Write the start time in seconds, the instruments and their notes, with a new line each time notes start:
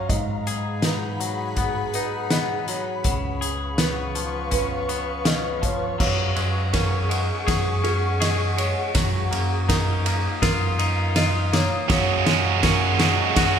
Already playing: clean electric guitar F4
0.09 picked electric bass G#2, clean electric guitar G#2, ambient pad G#4 F#5 B5, felt piano D#5, kick, closed hi-hat
0.47 clean electric guitar G#4, closed hi-hat
0.82 clean electric guitar D#4, felt piano B4, snare, closed hi-hat
1.20 clean electric guitar F#3, closed hi-hat
1.56 clean electric guitar B3, kick, closed hi-hat
1.94 clean electric guitar D#4, felt piano B4, closed hi-hat
2.30 clean electric guitar B3, felt piano D#5, snare, closed hi-hat
2.68 clean electric guitar F#3, felt piano C#5, closed hi-hat
3.04 picked electric bass C#2, clean electric guitar C#3, ambient pad B4 F5 C#6, kick, closed hi-hat
3.41 clean electric guitar G#4, closed hi-hat
3.78 clean electric guitar B3, felt piano B4, snare, closed hi-hat
4.15 clean electric guitar F3, closed hi-hat
4.51 clean electric guitar C#4, felt piano B4, kick, closed hi-hat
4.89 clean electric guitar B3, closed hi-hat
5.25 clean electric guitar C#4, felt piano D#5, snare, closed hi-hat
5.62 clean electric guitar F3, felt piano C#5, kick, closed hi-hat
5.98 picked electric bass F#2, clean electric guitar F#3, ambient pad G#4 F#5 C#6, felt piano C#5, kick, snare, crash
6.36 picked electric bass F#2, clean electric guitar G#3, ride
6.73 clean electric guitar C#4, felt piano A#4, kick, snare, ride
7.09 clean electric guitar G#3, ride
7.47 picked electric bass F#2, clean electric guitar G#4, kick, snare, ride
7.84 clean electric guitar C#4, felt piano G#4, ride
8.20 clean electric guitar G#4, felt piano D#5, snare, ride
8.57 clean electric guitar G#3, felt piano C#5, ride
8.95 picked electric bass F#2, clean electric guitar F#3, ambient pad F5 D#6, kick, snare, ride
9.31 picked electric bass F#2, clean electric guitar A#3, ride
9.69 clean electric guitar D#4, felt piano A#4, kick, snare, ride
10.06 clean electric guitar A#3, ride
10.42 picked electric bass F#2, clean electric guitar F4, felt piano A#4, kick, snare, ride
10.79 clean electric guitar D#4, ride
11.16 clean electric guitar F4, felt piano D#5, snare, ride
11.53 clean electric guitar A#3, felt piano C#5, snare, ride
11.88 picked electric bass F#2, distorted electric guitar F#3 G#3 C#4 F#4, clean electric guitar F#3, ambient pad G#4 F#5 C#6, felt piano C#5, kick, snare, ride
12.25 picked electric bass F#2, distorted electric guitar F#3 G#3 C#4 F#4, clean electric guitar G#3, snare, ride
12.62 distorted electric guitar F#3 G#3 C#4 F#4, clean electric guitar C#4, felt piano A#4, kick, snare, ride
12.98 distorted electric guitar F#3 G#3 C#4 F#4, clean electric guitar G#3, snare, ride
13.35 picked electric bass F#2, distorted electric guitar F#3 G#3 C#4 F#4, clean electric guitar F#4, kick, snare, ride